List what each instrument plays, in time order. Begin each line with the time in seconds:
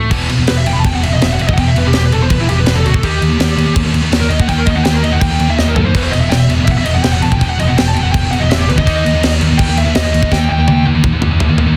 Already playing: picked electric bass A2, distorted electric guitar A3
0.11 picked electric bass E1, distorted electric guitar E2 B2 E3, kick, crash
0.29 picked electric bass E1, distorted electric guitar E2 B2, crash
0.39 distorted electric guitar E2 B2
0.47 picked electric bass E1, distorted electric guitar E2 B2, lead electric guitar B4, snare, crash
0.57 lead electric guitar E5
0.66 picked electric bass E1, distorted electric guitar E2 B2, lead electric guitar G5, crash
0.73 distorted electric guitar E2 B2, lead electric guitar B5
0.79 lead electric guitar A5
0.84 picked electric bass E1, distorted electric guitar E2 B2, lead electric guitar G5, kick, crash
0.94 distorted electric guitar E2 B2, lead electric guitar F#5
1.03 distorted electric guitar E2 B2, lead electric guitar E5, crash
1.12 distorted electric guitar E2 B2, lead electric guitar D#5
1.22 picked electric bass E1, distorted electric guitar E2 B2, lead electric guitar E5, snare, crash
1.31 distorted electric guitar E2 B2, lead electric guitar F#5
1.39 picked electric bass E1, distorted electric guitar E2 B2, lead electric guitar E5, crash
1.47 distorted electric guitar E2 B2, lead electric guitar D#5, kick
1.53 lead electric guitar F#5
1.57 picked electric bass E1, distorted electric guitar E2 B2, lead electric guitar G5, kick, crash
1.68 lead electric guitar E5
1.76 picked electric bass E1, distorted electric guitar E2 B2, lead electric guitar B4, crash
1.85 distorted electric guitar E2 B2, lead electric guitar G4
1.93 picked electric bass E1, distorted electric guitar E2 B2, lead electric guitar G4, snare, crash
2.05 lead electric guitar B4
2.12 distorted electric guitar E2 B2, lead electric guitar A4, crash
2.22 distorted electric guitar E2 B2, lead electric guitar C5
2.30 picked electric bass E1, distorted electric guitar E2 B2, lead electric guitar B4, kick, crash
2.40 distorted electric guitar E2 B2, lead electric guitar E4
2.49 picked electric bass E1, distorted electric guitar E2 B2, lead electric guitar G4, crash
2.57 distorted electric guitar E2 B2, lead electric guitar B4
2.66 picked electric bass E1, distorted electric guitar E2 B2, lead electric guitar B4, snare, crash
2.76 distorted electric guitar E2 B2, lead electric guitar A4
2.85 picked electric bass D2, distorted electric guitar E2 B2, lead electric guitar F#4, crash
2.94 distorted electric guitar E2 B2, lead electric guitar A4, kick
3.03 picked electric bass D#2, distorted electric guitar D#3 A#3 D#4, lead electric guitar G4, kick, crash
3.22 picked electric bass D#2, distorted electric guitar D#3 A#3, crash
3.31 distorted electric guitar D#3 A#3
3.39 picked electric bass D#2, distorted electric guitar D#3 A#3, snare, crash
3.57 picked electric bass D#2, distorted electric guitar D#3 A#3, crash
3.67 distorted electric guitar D#3 A#3
3.76 picked electric bass D#2, distorted electric guitar D#3 A#3, kick, crash
3.85 distorted electric guitar D#3 A#3
3.94 distorted electric guitar D#3 A#3, crash
4.02 distorted electric guitar D#3 A#3
4.11 picked electric bass D#2, distorted electric guitar D#3 A#3, snare, crash
4.20 distorted electric guitar D#3 A#3, lead electric guitar A#4
4.29 picked electric bass D#2, distorted electric guitar D#3 A#3, lead electric guitar D#5, crash
4.40 distorted electric guitar D#3 A#3, lead electric guitar F#5, kick
4.48 picked electric bass D#2, distorted electric guitar D#3 A#3, lead electric guitar G5, kick, crash
4.58 lead electric guitar A#4
4.66 picked electric bass D#2, distorted electric guitar D#3 A#3, lead electric guitar D#5, kick, crash
4.75 distorted electric guitar D#3 A#3, lead electric guitar F#5
4.84 picked electric bass D#2, distorted electric guitar D#3 A#3, lead electric guitar G5, snare, crash
4.93 lead electric guitar A#4
5.03 distorted electric guitar D#3 A#3, lead electric guitar D#5, crash
5.12 distorted electric guitar D#3 A#3, lead electric guitar F#5
5.21 picked electric bass D#2, distorted electric guitar D#3 A#3, lead electric guitar G5, kick, crash
5.30 distorted electric guitar D#3 A#3
5.39 picked electric bass D#2, distorted electric guitar D#3 A#3, crash
5.48 distorted electric guitar D#3 A#3, lead electric guitar E5
5.58 picked electric bass D#2, distorted electric guitar D#3 A#3, lead electric guitar D#5, snare
5.66 distorted electric guitar D#3 A#3, lead electric guitar A#4
5.76 picked electric bass F#2, distorted electric guitar D#3 A#3, lead electric guitar A4, floor tom
5.85 distorted electric guitar D#3 A#3, lead electric guitar C5
5.94 picked electric bass E1, distorted electric guitar E2 B2 E3, lead electric guitar B4, kick, crash
6.03 lead electric guitar C5
6.11 picked electric bass E1, distorted electric guitar E2 B2, lead electric guitar D#5, crash
6.21 distorted electric guitar E2 B2, lead electric guitar E5
6.29 picked electric bass E1, distorted electric guitar E2 B2, lead electric guitar G5, snare, crash
6.39 lead electric guitar E5
6.49 picked electric bass E1, distorted electric guitar E2 B2, crash
6.60 distorted electric guitar E2 B2
6.65 picked electric bass E1, distorted electric guitar E2, lead electric guitar E5, kick, crash
6.69 distorted electric guitar B2, lead electric guitar F#5
6.77 distorted electric guitar E2 B2, lead electric guitar E5
6.84 distorted electric guitar E2 B2, lead electric guitar D#5, crash
6.94 distorted electric guitar E2 B2, lead electric guitar F#5
7.03 picked electric bass E1, distorted electric guitar E2 B2, lead electric guitar G5, snare, crash
7.12 distorted electric guitar E2 B2, lead electric guitar F#5
7.22 picked electric bass E1, distorted electric guitar E2 B2, lead electric guitar A5, crash
7.31 distorted electric guitar E2 B2, lead electric guitar G5, kick
7.40 picked electric bass E1, distorted electric guitar E2 B2, lead electric guitar G5, kick, crash
7.49 lead electric guitar F#5
7.59 picked electric bass E1, distorted electric guitar E2 B2, lead electric guitar D#5, crash
7.67 distorted electric guitar E2 B2, lead electric guitar F#5
7.77 picked electric bass E1, distorted electric guitar E2 B2, lead electric guitar G5, snare, crash
7.88 lead electric guitar A5
7.94 distorted electric guitar E2 B2, lead electric guitar G5, crash
8.04 distorted electric guitar E2 B2, lead electric guitar F#5
8.12 picked electric bass E1, distorted electric guitar E2 B2, lead electric guitar G5, kick, crash
8.23 distorted electric guitar E2 B2
8.31 picked electric bass E1, distorted electric guitar E2 B2, lead electric guitar F#5, crash
8.40 distorted electric guitar E2 B2, lead electric guitar D#5
8.50 picked electric bass E1, distorted electric guitar E2 B2, lead electric guitar E5, snare, crash
8.58 distorted electric guitar E2 B2, lead electric guitar G4
8.69 picked electric bass D2, distorted electric guitar E2 B2, lead electric guitar B4, crash
8.78 distorted electric guitar E2 B2, lead electric guitar D#5, kick
8.86 picked electric bass D#2, distorted electric guitar D#3 A#3 D#4, kick, crash
9.05 picked electric bass D#2, distorted electric guitar D#3 A#3, crash
9.14 distorted electric guitar D#3 A#3
9.23 picked electric bass D#2, distorted electric guitar D#3 A#3, snare, crash
9.41 picked electric bass D#2, distorted electric guitar D#3 A#3, crash
9.51 distorted electric guitar D#3 A#3
9.58 picked electric bass D#2, distorted electric guitar D#3 A#3, lead electric guitar G5, kick, crash
9.69 distorted electric guitar D#3 A#3
9.77 distorted electric guitar D#3 A#3, lead electric guitar E5, crash
9.86 distorted electric guitar D#3 A#3
9.95 picked electric bass D#2, distorted electric guitar D#3 A#3, lead electric guitar D#5, snare, crash
10.04 distorted electric guitar D#3 A#3
10.13 picked electric bass D#2, distorted electric guitar D#3 A#3, crash
10.23 distorted electric guitar D#3 A#3, kick
10.32 picked electric bass D#2, distorted electric guitar D#3 A#3, lead electric guitar G5, kick, snare
10.50 picked electric bass D#2, distorted electric guitar D#3 A#3, lead electric guitar G5
10.59 distorted electric guitar D#3 A#3
10.68 picked electric bass D#2, distorted electric guitar D#3 A#3, high tom
10.86 distorted electric guitar D#3 A#3
10.95 distorted electric guitar D#3 A#3
11.04 picked electric bass D#2, distorted electric guitar D#3 A#3, kick, mid tom
11.13 distorted electric guitar D#3 A#3
11.22 picked electric bass D#2, distorted electric guitar D#3 A#3, mid tom
11.31 distorted electric guitar D#3 A#3
11.39 picked electric bass D#2, distorted electric guitar D#3 A#3, floor tom
11.49 distorted electric guitar D#3 A#3
11.57 picked electric bass D#2, distorted electric guitar D#3 A#3, floor tom
11.66 distorted electric guitar D#3 A#3